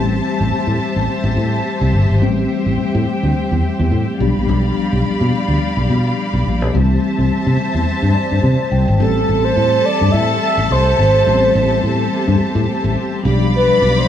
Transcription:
Already playing: A1 E3 G3 A3 C4 G4 C5 E5 A5
0.40 A1
0.53 muted fingered electric bass stroke
0.67 A2
0.96 A1
1.24 A1
1.37 A2
1.81 C2
1.93 G1
2.10 G#1
2.20 A1 E3 G3 A3 C4 G4 G5
2.66 A1
2.79 muted fingered electric bass stroke
2.95 A2
3.23 D2
3.51 E2
3.79 E2
3.92 A2
4.18 B1 F3 G3 B3 D4 G4 D5 F5 B5
4.37 A#1
4.49 B1
4.93 B1
5.21 B2
5.48 D2
5.77 B1
5.90 B2
6.33 B1
6.47 A#1
6.62 B1
6.73 C2 E3 G3 A3 C4 G4 C5 E5 A5
7.18 C2
7.31 muted fingered electric bass stroke
7.47 C3
7.74 E2
8.03 G2
8.15 D5
8.32 G2
8.43 C3 C5
8.72 C2 G5
8.88 G#1
8.98 A1 E3 G3 A3 C4 G4 A4 C5 E5 A5
9.29 A1
9.44 C5
9.57 A2
9.85 D5
10.01 G2
10.12 A2 E5
10.43 E5
10.57 A1
10.70 C2 C5
10.98 G#1 C5
11.25 A1 E3 G3 A3 B3 G4
11.34 C4
11.55 A1
11.83 A2
12.28 G2
12.40 muted fingered electric bass stroke
12.55 A2
12.84 A1
13.23 B1 B2 F3 G3 D4 G4 D5 F5 B5
13.55 B4
13.82 B1
13.98 C5

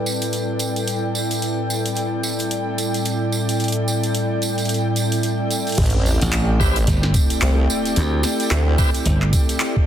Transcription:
Already playing: A2 G3 C4 E4 A4 B4 D5 G5
0.06 tambourine
0.22 closed hi-hat, tambourine
0.33 closed hi-hat, tambourine
0.59 closed hi-hat, tambourine
0.76 closed hi-hat, tambourine
0.87 closed hi-hat, tambourine
1.15 tambourine
1.31 closed hi-hat, tambourine
1.42 D5, closed hi-hat, tambourine
1.70 tambourine
1.85 closed hi-hat, tambourine
1.95 closed hi-hat, tambourine
2.23 tambourine
2.39 closed hi-hat, tambourine
2.51 closed hi-hat, tambourine
2.78 closed hi-hat, tambourine
2.94 closed hi-hat, tambourine
3.05 closed hi-hat, tambourine
3.32 tambourine
3.49 closed hi-hat, tambourine
3.60 closed hi-hat, tambourine
3.64 closed hi-hat
3.68 closed hi-hat
3.72 closed hi-hat
3.88 tambourine
4.04 closed hi-hat, tambourine
4.15 closed hi-hat, tambourine
4.42 closed hi-hat, tambourine
4.58 closed hi-hat, tambourine
4.65 closed hi-hat
4.69 closed hi-hat, tambourine
4.74 closed hi-hat
4.96 closed hi-hat, tambourine
5.12 closed hi-hat, tambourine
5.23 closed hi-hat, tambourine
5.51 closed hi-hat, tambourine
5.67 closed hi-hat, tambourine
5.69 closed hi-hat
5.72 closed hi-hat
5.75 closed hi-hat, tambourine
5.78 A1 A3 C4 G4, kick, closed hi-hat, crash, sub drop
5.82 closed hi-hat
5.86 closed hi-hat
5.90 closed hi-hat
6.06 tambourine
6.21 A1, closed hi-hat, tambourine
6.32 clap, closed hi-hat, tambourine
6.60 A1 C4 E4 G4 B4, kick, tambourine
6.76 closed hi-hat, tambourine
6.87 G1, kick, closed hi-hat, tambourine
7.03 snare
7.14 kick, closed hi-hat, tambourine
7.30 closed hi-hat, tambourine
7.42 C2, clap, closed hi-hat, tambourine
7.70 tambourine
7.86 closed hi-hat, tambourine
7.96 D2, closed hi-hat, tambourine
8.23 snare, tambourine
8.40 closed hi-hat, tambourine
8.51 D2, clap, closed hi-hat
8.78 C4 E4 G4 B4, kick, tambourine
8.94 closed hi-hat, tambourine
9.06 G1, kick, closed hi-hat, tambourine
9.22 clap
9.33 kick, closed hi-hat, tambourine
9.49 closed hi-hat, tambourine
9.60 clap, closed hi-hat, tambourine
9.76 kick

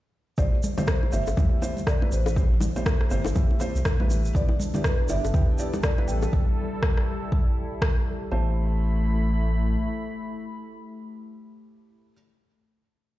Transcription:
0.38 A1 A3 E4 G4 C5 D5, kick, low bongo, shaker
0.63 high conga, shaker
0.78 A3 E4 G4 C5, low bongo, high conga, low conga, shaker
0.87 C5, kick, cross-stick, shaker
1.03 low bongo
1.12 G1 A3 E4 G4 C5 E5, shaker
1.27 G1, high bongo, shaker
1.37 E2 A3 E4 G4 E5, kick, low bongo, high conga, low conga, shaker
1.62 A3 E4 G4 C5, low bongo, shaker
1.77 high conga, shaker
1.87 D5, kick, cross-stick, shaker
2.01 A3 E4 G4 B4, low bongo
2.12 A1 C5, shaker
2.26 high bongo, low bongo, shaker
2.36 A3 E4 G4 C5, kick, shaker
2.60 low bongo, high conga, shaker
2.76 A3 E4 G4 C5, high conga, shaker
2.86 kick, cross-stick, low bongo, shaker
3.01 cross-stick
3.11 G1 A3 E4 G4 C5, shaker
3.25 G1, high bongo, low bongo, shaker
3.35 A3 E4 G4 E5, kick, high conga, low conga, shaker
3.51 low bongo
3.60 A3 E4 G4 C5, high bongo, shaker
3.75 C2, shaker
3.85 kick, cross-stick, low bongo, shaker
4.00 A1 A3 E4 G4 B4, high conga
4.10 low bongo, shaker
4.25 shaker
4.35 A1 G3 B3 D4 E4 G4 A4 D5, kick, shaker
4.49 low bongo
4.60 high conga, shaker
4.74 B3 E4 G4 D5, low bongo, high conga, low conga, shaker
4.84 B4, kick, cross-stick, shaker
5.09 G1 B3 E4 G4 D5 E5, low bongo, shaker
5.24 G1, high bongo, shaker
5.34 E2 B3 E4 G4 G5, kick, low bongo, high conga, low conga, shaker
5.59 B3 E4 G4 D5, shaker
5.73 low bongo, high conga, shaker
5.83 D5, kick, cross-stick, shaker
5.98 B3 E4 G4 B4, low bongo
6.08 A1 G5, shaker
6.22 high bongo, shaker
6.33 E4, kick
6.83 kick, cross-stick
6.97 cross-stick
7.32 kick
7.82 kick, cross-stick
8.31 A1 A3 E4 G4 C5 A5 B5

